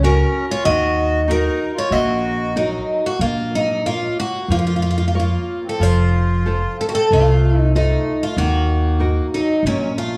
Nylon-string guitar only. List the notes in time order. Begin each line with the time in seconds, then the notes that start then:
0.03 F#4 A#4 C#5
0.66 D#3
1.28 D#4 F#4 A#4
1.92 A#3
2.56 D#4 F#4 A#4
3.22 A#3
3.86 A#4 C#5 F5
4.50 F3
5.14 F4 A#4 C#5
5.81 F3
6.46 F4 A4 C5
7.12 C3
7.75 F4 A4 C5
8.37 D#3
9.00 D#4 F#4 A#4
9.66 A#2